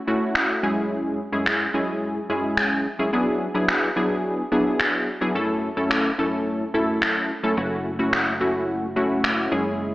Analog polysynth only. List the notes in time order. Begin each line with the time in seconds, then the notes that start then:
0.07 A3 C#4 E4 F#4
0.63 F#2 G#3 C#4 E4 G#4
1.32 F#2 G#3 C#4 E4 G#4
1.74 F#2 G#3 C#4 E4 G#4
2.29 F#2 G#3 C#4 E4 G#4
2.99 F#2 G#3 C#4 E4 G#4
3.13 F#3 B3 D4 E4 G#4
3.54 F#3 B3 D4 E4 G#4
3.96 F#3 B3 D4 E4 G#4
4.52 F#3 B3 D4 E4 G#4
5.21 F#3 B3 D4 E4 G#4
5.35 F#2 A3 C#4 E4 A4
5.77 F#2 A3 C#4 E4 A4
6.18 F#2 A3 C#4 E4 A4
6.74 F#2 A3 C#4 E4 A4
7.43 F#2 A3 C#4 E4 A4
7.57 A3 C#4 E4 F#4
7.99 A3 C#4 E4 F#4
8.40 A3 C#4 E4 F#4
8.96 A3 C#4 E4 F#4
9.51 G#3 C#4 E4 G#4